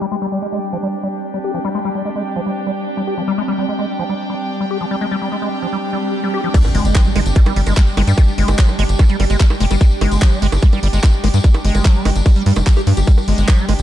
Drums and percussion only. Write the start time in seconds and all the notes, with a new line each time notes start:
6.54 kick, closed hi-hat, crash, tambourine
6.64 tambourine, high bongo
6.75 open hi-hat
6.85 closed hi-hat, tambourine
6.95 kick, clap, closed hi-hat, tambourine, high bongo
7.05 tambourine
7.16 open hi-hat, high bongo
7.26 closed hi-hat, tambourine
7.35 kick, closed hi-hat, tambourine
7.46 closed hi-hat, tambourine, high bongo
7.56 open hi-hat
7.66 closed hi-hat, tambourine, high bongo
7.77 kick, clap, closed hi-hat, tambourine
7.87 tambourine
7.97 open hi-hat, high bongo
8.07 closed hi-hat, tambourine
8.18 kick, closed hi-hat, high bongo
8.28 tambourine
8.38 open hi-hat
8.48 closed hi-hat, tambourine, high bongo
8.58 kick, clap, closed hi-hat
8.68 tambourine, high bongo
8.79 open hi-hat
8.89 closed hi-hat, tambourine
8.99 kick, closed hi-hat, tambourine, high bongo
9.09 closed hi-hat, tambourine
9.20 open hi-hat, high bongo
9.30 closed hi-hat, tambourine
9.40 kick, clap, closed hi-hat, tambourine
9.50 tambourine, high bongo
9.60 open hi-hat
9.71 closed hi-hat, tambourine, high bongo
9.81 kick, closed hi-hat, tambourine
9.91 tambourine
10.01 open hi-hat, high bongo
10.11 closed hi-hat, tambourine
10.22 kick, clap, closed hi-hat, tambourine, high bongo
10.32 tambourine
10.42 open hi-hat
10.52 closed hi-hat, tambourine, high bongo
10.62 kick, closed hi-hat, tambourine
10.73 closed hi-hat, tambourine, high bongo
10.83 open hi-hat
10.93 closed hi-hat, tambourine
11.03 kick, clap, closed hi-hat, tambourine, high bongo
11.13 tambourine
11.24 open hi-hat, high bongo
11.34 closed hi-hat, tambourine
11.44 kick, closed hi-hat, tambourine
11.54 closed hi-hat, tambourine, high bongo
11.65 open hi-hat
11.75 closed hi-hat, tambourine, high bongo
11.85 kick, clap, closed hi-hat, tambourine
11.95 tambourine
12.05 open hi-hat, high bongo
12.15 closed hi-hat, tambourine
12.26 kick, closed hi-hat, tambourine, high bongo
12.36 closed hi-hat, tambourine
12.46 open hi-hat
12.56 closed hi-hat, tambourine, high bongo
12.66 kick, clap, closed hi-hat, tambourine
12.77 tambourine, high bongo
12.87 open hi-hat
12.97 closed hi-hat, tambourine
13.07 kick, closed hi-hat, tambourine
13.18 tambourine, high bongo
13.28 open hi-hat
13.38 closed hi-hat, tambourine
13.48 kick, clap, closed hi-hat, tambourine, high bongo
13.59 tambourine
13.69 open hi-hat, high bongo
13.79 closed hi-hat, tambourine